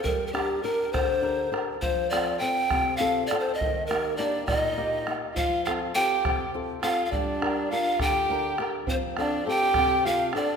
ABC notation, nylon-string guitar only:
X:1
M:6/8
L:1/8
Q:3/8=68
K:Fmix
V:1 name="Nylon-string guitar"
G, [DGB] [DGB] D, [DGB] [DGB] | F, [CFA] [CFA] C, [CFA] [CFA] | E, [B,EG] [B,EG] B,, [B,EG] [B,EG] | F, [CFA] [CFA] C, [CFA] [CFA] |
G, [DGB] [DGB] D, [DGB] [DGB] | F, [CFA] [CFA] C, [CFA] [CFA] |]